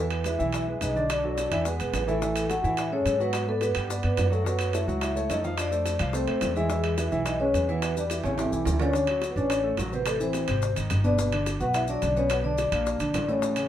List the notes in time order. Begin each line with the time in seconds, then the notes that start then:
Already playing: E2 E3 E4 B4
0.00 B3 E5
0.11 high bongo, high timbale
0.24 G#3 E4 G#4 B4 E5, high bongo, high timbale, maracas
0.39 B1 E3 E4 E5, high bongo, maracas
0.53 E4 E5, high bongo, high timbale, maracas
0.68 G#3 G#4 B4
0.80 B1 G#3 D#4 G#4 B4 D#5, high bongo, low bongo, high timbale, maracas
0.95 D3 D4 D5, high bongo, maracas
1.08 D4 D5, high bongo, high timbale, maracas
1.23 F#3 F#4 A4, high bongo
1.38 high bongo, high timbale, maracas
1.51 E2 E3 E4 E5, high bongo, high timbale, maracas
1.65 G#3 B3 G#4 B4, high bongo, maracas
1.80 B1 G#3 G#4 B4, high timbale, maracas
1.93 A1, high bongo, low bongo, high timbale, low timbale, maracas
2.07 E3 A3 E4 A4 E5, high bongo, maracas
2.22 E3 E4 E5, high bongo, maracas
2.36 high bongo, high timbale, maracas
2.48 G#3 F#4 G#4 A4 F#5, high bongo, high timbale, maracas
2.63 A2 E3 E4 E5, high bongo, maracas
2.77 E4 E5, high bongo, high timbale, maracas
2.90 G#3 C#4 G#4 A4 C#5
3.06 G#2 G#3 G#4 A4, high bongo, low bongo, high timbale, maracas
3.18 F#3 B3 F#4 B4 F#5, high bongo, maracas
3.33 high bongo, high timbale, maracas
3.47 A3 B3 A4 B4 D5, high bongo
3.61 B3 B4, high bongo, high timbale, maracas
3.75 G2 G3 G4 G5, high bongo, high timbale, maracas
3.89 B3 B4 D5, high bongo, maracas
4.03 G2 B3 B4 D5, high timbale
4.17 F#2, high bongo, low bongo, high timbale, low timbale, maracas
4.30 F#3 A3 F#4 A4 F#5, high bongo, maracas
4.44 F#3 B3 F#4 B4 F#5, high bongo, maracas
4.59 high bongo, high timbale, maracas
4.73 A3 E4 A4 C#5 E5, high bongo, high timbale, maracas
4.87 C#2 F#3 F#4 F#5, high bongo, maracas
5.01 E4 E5, high bongo, high timbale, maracas
5.15 A3 A4 C#5, maracas
5.29 F2 A3 D#4 A4 C#5 D#5, high bongo, low bongo, high timbale, low timbale, maracas
5.44 F3 F4 F5, high bongo, maracas
5.57 D4 D5, high bongo, high timbale, maracas
5.71 A3 A4 C5, high bongo, maracas
5.86 high bongo, high timbale, maracas
5.99 C2 F3 F4 F5, high bongo, high timbale, maracas
6.13 A3 C4 A4 C5, high bongo, maracas
6.27 D2 A3 A4 C5, high timbale
6.41 E2, high bongo, low bongo, high timbale, low timbale, maracas
6.55 E3 G#3 E4 G#4 E5, high bongo, maracas
6.69 E3 E4 E5, high bongo, maracas
6.84 high bongo, high timbale
6.97 G#3 E4 G#4 B4 E5, high bongo, high timbale, maracas
7.11 B1 E3 E4 E5, high bongo, maracas
7.26 D#4 D#5, high bongo, high timbale, maracas
7.40 G#3 C#4 G#4 B4 C#5
7.54 E2 G#3 G#4 B4, high bongo, low bongo, high timbale, maracas
7.68 E3 B3 E4 B4 E5, high bongo, maracas
7.82 high bongo, high timbale, maracas
7.96 G3 D4 G4 B4 D5, high bongo, maracas
8.10 E4 E5, high bongo, high timbale, maracas
8.24 A1 C#3 C#4 C#5, high bongo, high timbale, maracas
8.38 E3 E4 G4, high bongo, high timbale, maracas
8.52 B1 E3 E4 G4, maracas
8.65 D2, high bongo, low bongo, low timbale, maracas
8.79 D3 C#4 D4 C#5 D5, high bongo, low timbale, maracas
8.93 D3 D4, high bongo, maracas
9.07 F#3 F#4, high bongo, high timbale
9.21 high bongo, high timbale, maracas
9.29 B3 B4
9.36 A1 C#4 D4 C#5 D5, high bongo, maracas
9.50 high bongo, high timbale, maracas
9.63 A3 A4
9.77 A1 F#3 F#4, high bongo, low bongo, high timbale, low timbale, maracas
9.92 C3 B3 C4 B4, high bongo, maracas
10.06 A3 A4, high bongo, high timbale, maracas
10.20 E3 C4 E4 C5, high bongo, maracas
10.33 high bongo, high timbale, maracas
10.48 G#1 C3 C4, high bongo, high timbale, maracas
10.62 high bongo, maracas
10.76 G#1 D#3 D#4, high timbale, maracas
10.90 G1, high bongo, low bongo, high timbale, maracas
11.04 B2 B3 D4 D5, high bongo, maracas
11.18 B2 B3, high bongo, maracas
11.32 D3 D4, high timbale
11.46 high bongo, high timbale, maracas
11.60 B1 B3 F#4 B4 F#5, high bongo, maracas
11.74 E4 E5, high bongo, high timbale, maracas
11.88 F#3 D4 F#4 D5, maracas
12.02 B1 D3 D4, high bongo, low bongo, high timbale, maracas
12.16 B2 B3 C#4 C#5, high bongo, maracas
12.30 B3 B4, high bongo, high timbale, maracas
12.44 D3 D4 D5, high bongo
12.58 high bongo, high timbale, maracas
12.72 A#1 A#2 A#3, high bongo, high timbale, maracas
12.86 high bongo, maracas
13.00 A#1 D3 D4, high timbale, maracas
13.14 A1, high bongo, low bongo, high timbale, low timbale, maracas
13.28 A2 A3 C#4 C#5, high bongo, maracas
13.42 A2 A3, high bongo, maracas
13.56 C#3 C#4, high bongo, high timbale, maracas